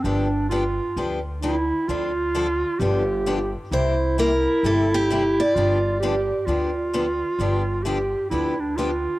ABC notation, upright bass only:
X:1
M:4/4
L:1/8
Q:"Swing" 1/4=131
K:Gmix
V:1 name="Upright bass" clef=bass
G,,,4 D,,4 | D,,4 G,,,4 | C,,4 G,,,4 | G,,,4 D,,4 |
G,,,4 D,,4 |]